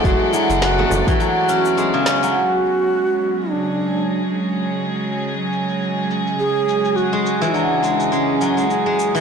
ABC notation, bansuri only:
X:1
M:4/4
L:1/8
Q:"Swing 16ths" 1/4=104
K:F#m
V:1 name="Bansuri"
F E F2 F3 z | F4 D3 z | z6 G2 | F2 D2 C2 G2 |]